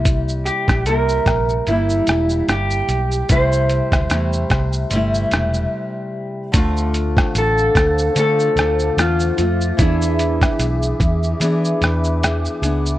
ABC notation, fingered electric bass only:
X:1
M:4/4
L:1/16
Q:"Swing 16ths" 1/4=74
K:C
V:1 name="Fingered electric bass" clef=bass
C,,3 _B,,, C,,2 B,,,2 G,,,2 E,,,2 G,,,2 =B,,,2 | C,,3 D,, E,,2 C,,2 G,,,2 E,,,2 z4 | D,,4 A,,,2 D,,2 D,2 D,,2 E,,2 F,,2 | E,,4 B,,,2 E,,2 E,2 E,,4 _D,,2 |]